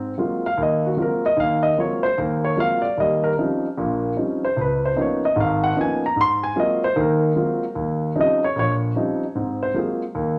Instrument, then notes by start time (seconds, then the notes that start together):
grand piano
Already playing: G#2 C4
0.18 F#3 G#3 A#3 C4 F4
0.46 F5
0.57 D#2
0.63 D#5
0.86 F#4
0.97 F#3 G#3 A#3 C4 F4
1.02 A#4
1.26 D#5
1.37 D#2 D#3 F5
1.63 D#5
1.78 F#3 G#3 A#3 C4 F4 C#5
2.03 C5
2.18 D#2 A#4
2.44 C#5
2.56 F#3 G#3 A#3 C4 F4 F5
2.82 D5
2.98 D#2 G3 D#5
3.24 A#4
3.38 F3 G3 C4 C#4 D#4
3.77 A#1 A#2
4.16 F3 G3 C4 C#4 D#4
4.45 C5
4.57 C#2
4.61 B4
4.86 C5
4.96 F3 A#3 B3 C#4 D#4
5.01 C#5
5.25 D#5
5.36 G#1 G#2
5.40 F5
5.64 F#5
5.76 F3 A#3 B3 C#4 D#4
5.81 G#5
6.06 A#5
6.16 G#2
6.21 C6
6.43 G#5
6.56 F#3 G#3 A#3 C4 F4 D#5
6.84 C5
6.96 D#2 D#3
7.01 A#4
7.36 F#3 G#3 A#3 C4 F4
7.75 D#2
8.15 F3 G3 C4 C#4 D#4
8.21 D#5
8.44 C#5
8.56 A#1 C#5
8.96 F3 G3 C4 C#4 D#4
9.35 G#2 C4
9.63 C5
9.74 F#3 G#3 A#3 C4 F4
9.79 G#4
10.15 D#2